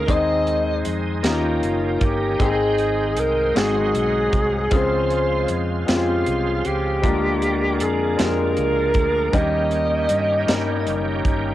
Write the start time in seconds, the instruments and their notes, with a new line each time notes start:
Already playing: grand piano C#3 C#4 D#4 F4 A#4, tonewheel organ D#4, alto saxophone A#4
0.06 fingered electric bass D#2, grand piano D#3 G#3 C4 D#4 G#4 C5, tonewheel organ G#3 C4, kick, closed hi-hat
0.11 alto saxophone D#5
0.47 closed hi-hat
0.85 fingered electric bass F2, closed hi-hat
1.23 fingered electric bass D#2, tonewheel organ D#3 A#3 C#4 G4, grand piano D#3 A#3 C#4 D#4 G4 A#4, snare, closed hi-hat
1.28 alto saxophone F4
1.63 fingered electric bass F#1, closed hi-hat
2.01 fingered electric bass G1, alto saxophone G4, kick, closed hi-hat
2.38 fingered electric bass G#1, grand piano G#2 G#3 C4 D#4 G#4 G5, tonewheel organ G#3 C5 G5, kick, closed hi-hat
2.42 alto saxophone G#4
2.78 closed hi-hat
3.17 fingered electric bass C2, alto saxophone A#4, closed hi-hat
3.54 fingered electric bass G#1, grand piano G#2 G#3 C4 D#4 F#4 G#4, tonewheel organ F#3 F#4, alto saxophone G#4, snare, closed hi-hat
3.94 fingered electric bass B1, closed hi-hat
4.33 fingered electric bass C2, kick, closed hi-hat
4.70 fingered electric bass C#2, grand piano C#3 G#3 C4 C#4 F4 G#4, tonewheel organ F3 F4, kick, closed hi-hat
4.77 alto saxophone C5
5.10 closed hi-hat
5.48 fingered electric bass F2, closed hi-hat
5.86 fingered electric bass F2, grand piano G#3 C4 C#4 F4 G4, snare, closed hi-hat
5.91 alto saxophone F4
5.95 grand piano G#4
6.26 fingered electric bass C2, closed hi-hat
6.65 fingered electric bass C#2, alto saxophone G4, closed hi-hat
7.02 fingered electric bass D2, grand piano D3 G#3 A#3 D4 F4 A#4, tonewheel organ A#3 D4, kick, closed hi-hat
7.42 closed hi-hat
7.80 fingered electric bass F2, alto saxophone G#4, closed hi-hat
8.17 fingered electric bass F2, grand piano G#3 A#3 D4 F4 G4, snare, closed hi-hat
8.21 alto saxophone A#4
8.25 grand piano G#4
8.57 fingered electric bass C#2, closed hi-hat
8.94 fingered electric bass D2, kick, closed hi-hat
9.32 fingered electric bass D#2, grand piano D#3 G3 A#3 C#4 D#4 G4, tonewheel organ D#3 G3 C#4 G4, alto saxophone D#5, kick, closed hi-hat
9.71 closed hi-hat
10.09 fingered electric bass G2, closed hi-hat
10.47 fingered electric bass G2, grand piano G3 A#3 C#4 D#4 A#4, snare, closed hi-hat
10.87 fingered electric bass F#1, closed hi-hat
11.25 fingered electric bass G1, kick, closed hi-hat